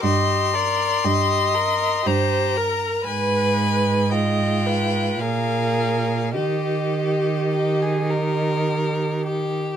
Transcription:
<<
  \new Staff \with { instrumentName = "Violin" } { \time 3/4 \key ees \major \tempo 4 = 55 c'''2 bes''4 | aes''4 g''4 f''4 | ees''2 r4 | }
  \new Staff \with { instrumentName = "Viola" } { \time 3/4 \key ees \major ees''8 d''8 ees''4 c''8 bes'8 | ces''4 ees''8 ces''8 bes'4 | g'2~ g'8 r8 | }
  \new Staff \with { instrumentName = "Violin" } { \time 3/4 \key ees \major g'8 bes'8 g'8 bes'8 g'8 bes'8 | ces''4 f'4 aes'4 | g'4 g'16 aes'16 bes'4 g'8 | }
  \new Staff \with { instrumentName = "Cello" } { \clef bass \time 3/4 \key ees \major g,4 g,4 g,4 | aes,2 bes,4 | ees2. | }
>>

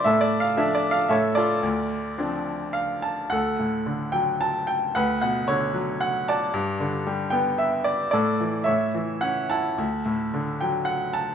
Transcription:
<<
  \new Staff \with { instrumentName = "Grand piano" } { \time 3/4 \key d \minor \tempo 4 = 112 << { \tuplet 3/2 { e''8 d''8 f''8 e''8 d''8 f''8 } e''8 d''8~ | d''2 f''8 a''8 | \key d \major fis''4. g''8 a''8 g''8 | fis''8 fis''8 cis''4 fis''8 a''8~ |
a''4 r8 g''8 e''8 d''8 | d''4 e''4 fis''8 a''8~ | a''4 r8 g''8 fis''8 a''8 | } \\ { a'4. r8 <a' cis''>8 <f' a'>8~ | <f' a'>2 r4 | a'4. r4. | b'4. r4 d''8~ |
d''4 r2 | a'4 cis''4. fis''8~ | fis''4 r2 | } >> }
  \new Staff \with { instrumentName = "Grand piano" } { \clef bass \time 3/4 \key d \minor a,4 <f a d'>4 a,4 | d,4 <f c' d'>2 | \key d \major d,8 a,8 d8 fis4. | d,8 b,8 d8 fis4. |
g,8 d8 g8 b4. | a,8 e8 a,8 e8 cis'8 e'8 | d,8 a,8 d8 fis4. | }
>>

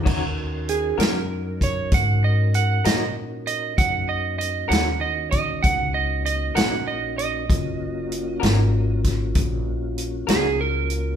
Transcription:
<<
  \new Staff \with { instrumentName = "Electric slide guitar" } { \time 12/8 \key ees \minor \tempo 4. = 65 r4 aes'8 bes'4 des''8 ges''8 ees''8 ges''8 ees''8 r8 ees''8 | ges''8 ees''8 ees''8 ges''8 ees''8 ees''8 ges''8 ees''8 ees''8 ges''8 ees''8 ees''8~ | ees''2~ ees''8 r2 aes'8 bes'4 | }
  \new Staff \with { instrumentName = "Clean electric guitar" } { \time 12/8 \key ees \minor <ees des' ges' bes'>8 r4 <ees des' ges' bes'>8 r2 r8 <ees des' ges' bes'>8 r4 | r4. <ees des' ges' bes'>8 r2 r8 <ees des' ges' bes'>8 r4 | r4. <ees des' ges' bes'>8 r2 r8 <ees des' ges' bes'>8 r4 | }
  \new Staff \with { instrumentName = "Tonewheel organ" } { \time 12/8 \key ees \minor <des' ees' ges' bes'>1. | <bes des' ees' ges'>1. | <bes des' f' ges'>1. | }
  \new Staff \with { instrumentName = "Upright bass" } { \clef bass \time 12/8 \key ees \minor ees,4. ges,4. aes,4. bes,4. | ges,4. ees,4. des,4. bes,,4. | ges,,4. aes,,4. bes,,4. des,4. | }
  \new DrumStaff \with { instrumentName = "Drums" } \drummode { \time 12/8 <cymc bd>4 hh8 <hh sn>4 <hh bd>8 <hh bd>4 hh8 <hh sn>4 hh8 | <hh bd>4 hh8 <hh sn>4 <hh bd>8 <hh bd>4 hh8 <hh sn>4 hh8 | <hh bd>4 hh8 <hh sn>4 <hh bd sn>8 <hh bd>4 hh8 <hh sn>4 hh8 | }
>>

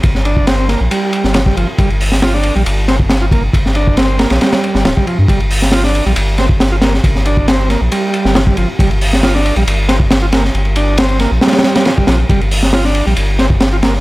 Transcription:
<<
  \new Staff \with { instrumentName = "Transistor combo organ" } { \time 4/4 \key g \minor \tempo 4 = 137 r8 d'8 c'8 bes16 r16 g4 f16 g16 f16 r16 | g16 r8. f'16 d'8 g16 r8 c'16 r8 f'16 bes16 r16 | r8 d'8 c'8 bes16 r16 g4 f16 g16 f16 r16 | g16 r8. f'16 d'8 g16 r8 c'16 r8 f'16 bes16 r16 |
r8 d'8 c'8 bes16 r16 g4 f16 g16 f16 r16 | g16 r8. f'16 d'8 g16 r8 c'16 r8 f'16 bes16 r16 | r8 d'8 c'8 bes16 r16 g4 f16 g16 f16 r16 | g16 r8. f'16 d'8 g16 r8 c'16 r8 f'16 bes16 r16 | }
  \new Staff \with { instrumentName = "Sub bass" } { \clef bass \time 4/4 \key g \minor g,,4.~ g,,16 bes,,16 r8. g,,8. g,,16 r16 | g,,4.~ g,,16 bes,,16 g,,2 | g,,4.~ g,,16 bes,,16 r8. g,,16 d,,16 r8 g,16 | g,,4.~ g,,16 bes,,16 g,,2 |
g,,4.~ g,,16 bes,,16 r8. g,,8. g,,16 r16 | g,,4.~ g,,16 bes,,16 g,,2 | g,,4.~ g,,16 bes,,16 r4. bes,,16 r16 | g,,4.~ g,,16 bes,,16 g,,2 | }
  \new DrumStaff \with { instrumentName = "Drums" } \drummode { \time 4/4 <bd cymr>16 sn16 cymr16 bd16 <cymr sn>8 <cymr sn>8 cymr8 cymr16 sn16 <cymr sn>16 bd16 cymr8 | <bd cymr>16 cymr16 hho16 sn16 <cymr sn>16 sn16 cymr16 cymr16 cymr8 <cymr sn>16 bd16 <cymr sn>8 <bd cymr>8 | <bd cymr>16 sn16 cymr16 bd16 <cymr sn>8 <cymr sn>16 <cymr sn>16 <cymr sn>16 <cymr sn>16 cymr16 sn16 <cymr sn>16 bd16 cymr8 | <bd cymr>16 cymr16 hho16 sn16 <cymr sn>16 sn16 cymr16 cymr16 cymr8 <cymr sn>16 bd16 <cymr sn>8 <cymr sn>16 sn16 |
<bd cymr>16 sn16 cymr16 bd16 <cymr sn>8 <cymr sn>8 cymr8 cymr16 sn16 <cymr sn>16 bd16 cymr8 | <bd cymr>16 cymr16 hho16 sn16 <cymr sn>16 sn16 cymr16 cymr16 cymr8 <cymr sn>16 bd16 <cymr sn>8 <cymr sn>16 sn16 | cymr16 cymr16 cymr8 <cymr sn>8 <cymr sn>8 <cymr sn>32 <cymr sn>32 <cymr sn>32 <cymr sn>32 <cymr sn>16 <cymr sn>16 <cymr sn>16 bd16 <cymr sn>8 | <bd cymr>16 cymr16 hho16 sn16 <cymr sn>16 sn16 cymr16 cymr16 cymr8 <cymr sn>16 bd16 <cymr sn>8 <cymr sn>16 sn16 | }
>>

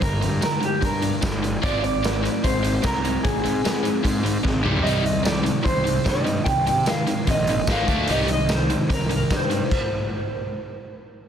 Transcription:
<<
  \new Staff \with { instrumentName = "Clean electric guitar" } { \time 4/4 \key c \minor \tempo 4 = 149 bes'4 bes'8 g'8 bes'4. r8 | d''8 d''4. c''4 bes'4 | aes'2 r2 | ees''8 ees''8 d''4 c''4 ees''4 |
g''8 g''8 f''4 ees''4 f''4 | ees''8 ees''8 c''4 bes'8 bes'8 c''4~ | c''2. r4 | }
  \new Staff \with { instrumentName = "Overdriven electric guitar" } { \clef bass \time 4/4 \key c \minor <g, d>8 <g, d>8 <g, d>8 <g, d>8 <g, d>8 <g, d>8 <g, d>8 <g, d>8 | <aes c' f'>8 <aes c'>8 <aes c'>8 <aes c'>8 <aes c'>8 <aes c'>8 <aes c'>8 <aes c'>8 | <aes c'>8 <aes c'>8 <aes c'>8 <aes c'>8 <aes c'>8 <aes c'>8 <aes c'>8 <c ees g>8 | <c ees g>8 <c ees>8 <c ees>8 <c ees>8 <c ees>8 <c ees>8 <c ees>8 <c ees>8 |
<c ees>8 <c ees>8 <c ees>8 <c ees>8 <c ees>8 <c ees>8 <aes, ees aes>8 <d a d'>8 | <c ees g>8 <c ees>8 <c ees>8 <c ees>8 <c ees>8 <c ees>8 <c ees>8 <c ees>8 | r1 | }
  \new Staff \with { instrumentName = "Picked electric bass" } { \clef bass \time 4/4 \key c \minor g,,8 g,8 r4 g,4 g,,4 | aes,,2 aes,,4 c,4 | aes,,8 aes,8 r4 aes,4 aes,,8 c,8 | c,2 c,4 g,4 |
c,8 c8 r4 bes,,4 aes,,8 d,8 | c,2 c,4 g,4 | r1 | }
  \new DrumStaff \with { instrumentName = "Drums" } \drummode { \time 4/4 <hh bd>8 hh8 <hh sn tamb>8 hh8 <hh bd>8 hh8 <hh bd sn tamb>8 hh8 | <hh bd>8 hh8 <hh sn tamb>8 hh8 <hh bd>8 hh8 <hh bd sn tamb>8 hh8 | <hh bd>8 hh8 <hh sn tamb>8 hh8 <hh bd>8 hh8 <bd sn>16 tommh16 toml16 tomfh16 | hh8 hh8 <hh sn tamb>8 hh8 <hh bd>8 hh8 <hh bd sn tamb>8 hh8 |
<hh bd>8 hh8 <hh sn tamb>8 hh8 <hh bd>8 hh8 <hh bd sn tamb>8 <hh bd>8 | hh8 hh8 <hh sn tamb>8 hh8 <hh bd>8 hh8 <hh bd sn tamb>8 hh8 | <cymc bd>4 r4 r4 r4 | }
>>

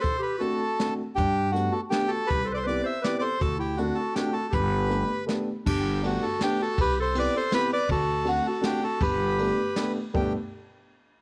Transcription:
<<
  \new Staff \with { instrumentName = "Bandoneon" } { \time 3/4 \key g \major \tempo 4 = 161 c''8 b'8 a'4. r8 | g'4 fis'8 a'8 g'8 a'8 | b'8 c''32 d''32 c''16 d''8 e''8 d''16. d''32 c''8 | a'8 g'8 fis'8 a'8 g'8 a'8 |
b'2 r4 | g'4 fis'8 a'8 g'8 a'8 | b'8 c''8 d''8 c''8 b'8 d''8 | a'4 fis'8 a'8 g'8 a'8 |
b'2~ b'8 r8 | g'8 r2 r8 | }
  \new Staff \with { instrumentName = "Clarinet" } { \time 3/4 \key g \major a'8 g'8 fis'4. r8 | d'4 d'8 fis'8 d'8 fis'8 | g'8 a'32 b'32 a'16 b'8 c''8 b'16. b'32 a'8 | fis'8 e'8 d'8 fis'8 d'8 fis'8 |
g'2 r4 | d'4 d'8 fis'8 d'8 fis'8 | g'8 a'8 b'8 a'8 g'8 b'8 | fis'4 d'8 fis'8 d'8 fis'8 |
g'2~ g'8 r8 | d'8 r2 r8 | }
  \new Staff \with { instrumentName = "Upright piano" } { \time 3/4 \key g \major r4 <a c' d' fis'>8 r8 <a c' d' fis'>8 r8 | r4 <a b d' g'>8 r8 <a b d' g'>8 r8 | r4 <b c' e' g'>8 r8 <b c' e' g'>8 r8 | r4 <a c' d' fis'>8 r8 <a c' d' fis'>8 r8 |
r4 <a b d' g'>8 r8 <a b d' g'>8 r8 | r4 <a b d' g'>8 r8 <a b d' g'>8 r8 | r4 <b c' e' g'>8 r8 <b c' e' g'>8 r8 | r4 <a c' d' fis'>8 r8 <a c' d' fis'>8 r8 |
r4 <a b d' g'>8 r8 <a b d' g'>8 r8 | <a b d' g'>8 r2 r8 | }
  \new Staff \with { instrumentName = "Upright bass" } { \clef bass \time 3/4 \key g \major r2. | g,2 r4 | c,2 r4 | d,2 r4 |
g,,2 r4 | g,,2 r4 | c,2 r4 | d,2 r4 |
g,,2 r4 | g,,8 r2 r8 | }
  \new DrumStaff \with { instrumentName = "Drums" } \drummode { \time 3/4 <hh bd>4 hh4 <hh sn>4 | <hh bd>4 hh4 <hh sn>4 | <hh bd>4 hh4 <hh sn>4 | <hh bd>4 hh4 <hh sn>4 |
<hh bd>4 hh4 <hh sn>4 | <cymc bd>4 cymr4 <cymr sn>4 | <bd cymr>4 cymr4 <cymr sn>4 | <bd cymr>4 cymr4 <cymr sn>4 |
<bd cymr>4 cymr4 <cymr sn>4 | bd4 r4 r4 | }
>>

